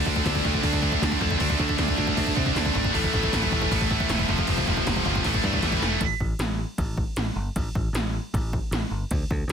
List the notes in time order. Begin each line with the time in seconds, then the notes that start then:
Already playing: D3 A3 D4
0.06 D2 D3 A3 D4, kick
0.16 kick
0.25 D2 D3 A3 D4, kick, snare, crash
0.35 kick
0.43 D2 D3 A3 D4, kick
0.54 kick
0.62 D2 D3 A3 D4, kick, crash
0.73 kick
0.80 D3 A3 D4, kick
0.92 kick
1.01 D2 D3 A3 D4, kick, snare, crash
1.12 kick
1.19 F2 D3 A3 D4, kick
1.31 kick
1.37 D2 D3 A3 D4, kick, crash
1.50 kick
1.57 D2 D3 A3 D4, kick
1.69 kick
1.77 D2 D3 A3 D4, kick, snare, crash
1.88 kick
1.96 D2 D3 A3 D4, kick
2.07 kick
2.15 D2 D3 A3 D4, kick, crash
2.27 kick
2.35 C3 D3 A3 D4, kick
2.46 kick
2.54 D2 D3 A3 D4, kick, snare, crash
2.65 kick
2.73 G#1 D3 A3 D4, kick
2.85 kick
2.92 A1 A2 E3 A3, kick, crash
3.04 kick
3.13 A1 A2 E3 A3, kick
3.23 kick
3.32 A1 A2 E3 A3, kick, snare, crash
3.43 kick
3.50 A1 A2 E3 A3, kick
3.62 kick
3.71 A1 A2 E3 A3, kick, crash
3.81 kick
3.90 A2 E3 A3, kick
4.00 kick
4.09 E1 A2 E3 A3, kick, snare, crash
4.19 kick
4.28 F1 F2 C3 F3, kick
4.38 kick
4.47 F1 F2 C3 F3, kick, crash
4.58 kick
4.67 F1 F2 C3 F3, kick
4.77 kick
4.86 F1 F2 C3 F3, kick, snare, crash
4.96 kick
5.05 G1 F2 C3 F3, kick
5.16 kick
5.24 A1 A2 E3 A3, kick, crash
5.34 kick
5.43 G2 A2 E3 A3, kick
5.53 kick
5.62 A1 A2 E3 A3, kick, snare, crash
5.72 kick
5.80 E1 A2 E3 A3, snare
6.01 A1, kick, ride
6.20 A1, kick
6.39 A1, snare, ride
6.78 A1, kick, ride
6.97 kick
7.16 A1, snare, ride
7.36 G1
7.56 A1, kick, ride
7.75 A1, kick
7.93 A1, snare, ride
8.34 A1, kick, ride
8.53 kick
8.71 A1, snare, ride
8.91 G1
9.11 D2, kick, ride
9.31 D2, kick
9.48 D2